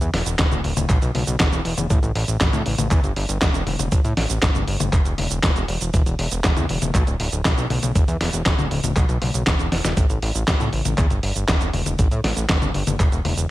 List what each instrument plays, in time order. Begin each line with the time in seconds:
0.01 analog synth bass E2, closed hi-hat, cabasa
0.14 analog synth bass E1, snare, open hi-hat
0.26 analog synth bass E1, closed hi-hat, cabasa
0.39 analog synth bass D1, kick, snare, clap, closed hi-hat, cabasa
0.52 analog synth bass D1, closed hi-hat, high tom, cabasa
0.64 analog synth bass D1, open hi-hat
0.77 analog synth bass D1, closed hi-hat, high tom, cabasa
0.89 analog synth bass B1, kick, clap, closed hi-hat, cabasa
1.02 analog synth bass B1, closed hi-hat, cabasa
1.15 analog synth bass B1, open hi-hat, high tom
1.27 analog synth bass B1, closed hi-hat, cabasa
1.40 analog synth bass E1, kick, snare, clap, closed hi-hat, cabasa
1.52 analog synth bass E1, closed hi-hat, cabasa
1.65 analog synth bass E1, open hi-hat
1.77 analog synth bass E1, closed hi-hat, high tom, cabasa
1.90 analog synth bass A1, kick, closed hi-hat, cabasa
2.03 analog synth bass A1, closed hi-hat, cabasa
2.15 analog synth bass A1, open hi-hat
2.28 analog synth bass A1, closed hi-hat, cabasa
2.41 analog synth bass A1, kick, snare, clap, closed hi-hat, cabasa
2.53 analog synth bass A2, closed hi-hat, high tom, cabasa
2.66 analog synth bass A1, open hi-hat
2.78 analog synth bass A1, closed hi-hat, high tom, cabasa
2.91 analog synth bass E2, kick, clap, closed hi-hat, cabasa
3.04 analog synth bass G1, closed hi-hat, cabasa
3.16 analog synth bass G1, open hi-hat
3.29 analog synth bass G1, closed hi-hat, cabasa
3.42 analog synth bass E1, kick, snare, clap, closed hi-hat, cabasa
3.54 analog synth bass E1, closed hi-hat, cabasa
3.67 analog synth bass E1, open hi-hat, high tom
3.79 analog synth bass E1, closed hi-hat, high tom, cabasa
3.92 analog synth bass A1, kick, closed hi-hat, cabasa
4.05 analog synth bass A2, closed hi-hat, cabasa
4.17 analog synth bass A1, snare, open hi-hat
4.30 analog synth bass A1, closed hi-hat, cabasa
4.42 analog synth bass G1, kick, snare, clap, closed hi-hat, cabasa
4.55 analog synth bass G1, closed hi-hat, high tom, cabasa
4.68 analog synth bass G1, open hi-hat
4.80 analog synth bass G1, closed hi-hat, high tom, cabasa
4.93 analog synth bass E1, kick, clap, closed hi-hat, cabasa
5.05 analog synth bass E1, closed hi-hat, cabasa
5.18 analog synth bass E1, open hi-hat, high tom
5.31 analog synth bass E1, closed hi-hat, cabasa
5.43 analog synth bass E1, kick, snare, clap, closed hi-hat, cabasa
5.56 analog synth bass E1, closed hi-hat, cabasa
5.68 analog synth bass E1, open hi-hat
5.81 analog synth bass E1, closed hi-hat, cabasa
5.94 analog synth bass E1, kick, closed hi-hat, cabasa
6.06 analog synth bass E1, closed hi-hat, cabasa
6.19 analog synth bass E1, open hi-hat
6.31 analog synth bass E1, closed hi-hat, cabasa
6.44 analog synth bass E1, kick, snare, clap, closed hi-hat, cabasa
6.57 analog synth bass E2, closed hi-hat, high tom, cabasa
6.69 analog synth bass E1, open hi-hat
6.82 analog synth bass E1, closed hi-hat, high tom, cabasa
6.95 analog synth bass B1, kick, clap, closed hi-hat, cabasa
7.07 analog synth bass D1, closed hi-hat, cabasa
7.20 analog synth bass D1, open hi-hat
7.32 analog synth bass D1, closed hi-hat, cabasa
7.45 analog synth bass B1, kick, snare, clap, closed hi-hat, cabasa
7.58 analog synth bass B1, closed hi-hat, cabasa
7.70 analog synth bass B1, open hi-hat, high tom
7.83 analog synth bass B1, closed hi-hat, high tom, cabasa
7.95 analog synth bass E1, kick, closed hi-hat, cabasa
8.08 analog synth bass E2, closed hi-hat, cabasa
8.21 analog synth bass E1, snare, open hi-hat
8.33 analog synth bass E1, closed hi-hat, cabasa
8.46 analog synth bass D1, kick, snare, clap, closed hi-hat, cabasa
8.59 analog synth bass D1, closed hi-hat, high tom, cabasa
8.71 analog synth bass D1, open hi-hat
8.84 analog synth bass D1, closed hi-hat, high tom, cabasa
8.96 analog synth bass B1, kick, clap, closed hi-hat, cabasa
9.09 analog synth bass B1, closed hi-hat, cabasa
9.22 analog synth bass B1, open hi-hat, high tom
9.34 analog synth bass B1, closed hi-hat, cabasa
9.47 analog synth bass E1, kick, snare, clap, closed hi-hat, cabasa
9.59 analog synth bass E1, closed hi-hat, cabasa
9.72 analog synth bass E1, snare, open hi-hat
9.85 analog synth bass E1, snare, closed hi-hat, high tom, cabasa
9.97 analog synth bass A1, kick, closed hi-hat, cabasa
10.10 analog synth bass A1, closed hi-hat, cabasa
10.22 analog synth bass A1, open hi-hat
10.35 analog synth bass A1, closed hi-hat, cabasa
10.48 analog synth bass A1, kick, snare, clap, closed hi-hat, cabasa
10.60 analog synth bass A2, closed hi-hat, high tom, cabasa
10.73 analog synth bass A1, open hi-hat
10.85 analog synth bass A1, closed hi-hat, high tom, cabasa
10.98 analog synth bass E2, kick, clap, closed hi-hat, cabasa
11.10 analog synth bass G1, closed hi-hat, cabasa
11.23 analog synth bass G1, open hi-hat
11.36 analog synth bass G1, closed hi-hat, cabasa
11.48 analog synth bass E1, kick, snare, clap, closed hi-hat, cabasa
11.61 analog synth bass E1, closed hi-hat, cabasa
11.73 analog synth bass E1, open hi-hat, high tom
11.86 analog synth bass E1, closed hi-hat, high tom, cabasa
11.99 analog synth bass A1, kick, closed hi-hat, cabasa
12.11 analog synth bass A2, closed hi-hat, cabasa
12.24 analog synth bass A1, snare, open hi-hat
12.37 analog synth bass A1, closed hi-hat, cabasa
12.49 analog synth bass G1, kick, snare, clap, closed hi-hat, cabasa
12.62 analog synth bass G1, closed hi-hat, high tom, cabasa
12.74 analog synth bass G1, open hi-hat
12.87 analog synth bass G1, closed hi-hat, high tom, cabasa
13.00 analog synth bass E1, kick, clap, closed hi-hat, cabasa
13.12 analog synth bass E1, closed hi-hat, cabasa
13.25 analog synth bass E1, open hi-hat, high tom
13.37 analog synth bass E1, closed hi-hat, cabasa